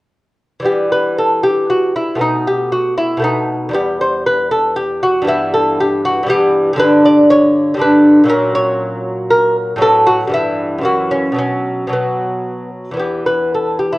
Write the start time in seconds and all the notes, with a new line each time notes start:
0.60 E3 G3
0.64 B3 G4
0.92 B4
1.19 A4
1.44 G4
1.70 F#4
1.96 E4
2.15 B2 A3 B3
2.21 D#4
2.47 G4
2.72 F#4
2.98 E4
3.17 B2 A3
3.22 B3 D#4
3.69 E2 G3
3.73 B3 G4
4.01 C5
4.26 B4
4.51 A4
4.76 G4
5.03 F#4
5.22 G2 E3
5.27 B3 E4
5.54 A4
5.80 G4
6.05 F#4
6.23 G2 E3
6.28 B3 G4
6.73 G2 D3
6.78 D4 B4
7.05 D5
7.30 C#5
7.74 G2 D3
7.79 D4 B4
8.24 A#2 F#3
8.28 C#4 A#4
8.55 C#5
9.30 A#4
9.76 A2 F#3
9.81 B3 A4
10.07 F#4
10.27 G2 E3
10.31 B3 E4
10.79 F#2 E3
10.83 A#3 F#4
11.11 C#4
11.32 B2 F#3
11.36 B3 C#4
11.87 B2 F#3
11.93 B3
12.91 E2 E3
12.97 B3 G4
13.26 B4
13.54 A4
13.79 G4
13.92 E4